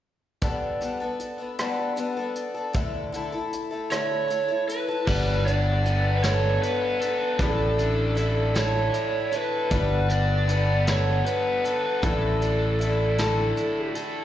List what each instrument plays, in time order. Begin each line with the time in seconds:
0.41 twelve-string acoustic guitar G3 B3 D4 A4, kick, closed hi-hat
0.81 twelve-string acoustic guitar G3 B3 D4 A4, closed hi-hat
1.00 twelve-string acoustic guitar B3 D4 A4
1.20 closed hi-hat
1.38 twelve-string acoustic guitar B3 D4 A4
1.59 twelve-string acoustic guitar G3 B3 D4 A4, cross-stick, closed hi-hat
1.96 twelve-string acoustic guitar G3 B3 D4 A4, closed hi-hat
2.17 twelve-string acoustic guitar B3 D4 A4
2.35 closed hi-hat
2.54 twelve-string acoustic guitar B3 D4 A4
2.73 twelve-string acoustic guitar A2 D3 A3 E4 A4, kick, closed hi-hat
3.12 twelve-string acoustic guitar D3 A3 E4 A4, closed hi-hat
3.32 twelve-string acoustic guitar A3 E4 A4
3.53 closed hi-hat
3.71 twelve-string acoustic guitar A3 E4 A4
3.90 twelve-string acoustic guitar A2 D3 A3 E4 A4, lead electric guitar C#5, cross-stick, closed hi-hat
4.28 twelve-string acoustic guitar D3 A3 E4 A4, closed hi-hat
4.48 twelve-string acoustic guitar A3 E4 A4
4.68 lead electric guitar B4, closed hi-hat
4.88 twelve-string acoustic guitar A3 E4 A4
5.07 fingered electric bass G1, twelve-string acoustic guitar G3 B3 D4 A4, kick, crash
5.46 overdriven electric guitar D4, lead electric guitar D5, closed hi-hat
5.84 twelve-string acoustic guitar G3 B3 D4, closed hi-hat
5.88 twelve-string acoustic guitar A4
6.17 lead electric guitar B4
6.23 twelve-string acoustic guitar G3 B3 D4 A4, lead electric guitar C#5, snare, closed hi-hat
6.62 overdriven electric guitar B3, lead electric guitar B4, closed hi-hat
7.01 twelve-string acoustic guitar B3 D4 A4, closed hi-hat
7.39 fingered electric bass A1, twelve-string acoustic guitar A2 D3 D4 E4 A4, lead electric guitar A4, kick, closed hi-hat
7.78 overdriven electric guitar D4, closed hi-hat
8.15 twelve-string acoustic guitar D3 D4 E4, closed hi-hat
8.20 twelve-string acoustic guitar A4
8.54 twelve-string acoustic guitar A2 D3 D4 E4 A4, lead electric guitar C#5, snare, closed hi-hat
8.94 overdriven electric guitar E4, closed hi-hat
9.32 twelve-string acoustic guitar E4 A4, closed hi-hat
9.36 twelve-string acoustic guitar D4, lead electric guitar B4
9.71 fingered electric bass G1, twelve-string acoustic guitar G3 B3 D4 A4, kick, closed hi-hat
10.09 overdriven electric guitar D4, lead electric guitar D5, closed hi-hat
10.47 twelve-string acoustic guitar G3 B3 D4 A4, closed hi-hat
10.87 twelve-string acoustic guitar G3 B3 D4 A4, lead electric guitar C#5, snare, closed hi-hat
11.26 overdriven electric guitar B3, lead electric guitar B4, closed hi-hat
11.65 twelve-string acoustic guitar B3 D4 A4, closed hi-hat
12.02 fingered electric bass A1, twelve-string acoustic guitar A2 D3 D4 E4 A4, lead electric guitar A4, kick, closed hi-hat
12.42 overdriven electric guitar D4, closed hi-hat
12.79 twelve-string acoustic guitar D3 D4 E4 A4, closed hi-hat
13.18 twelve-string acoustic guitar A2 D3 D4 E4 A4, snare, closed hi-hat
13.57 overdriven electric guitar E4, closed hi-hat
13.95 twelve-string acoustic guitar D4 E4 A4, closed hi-hat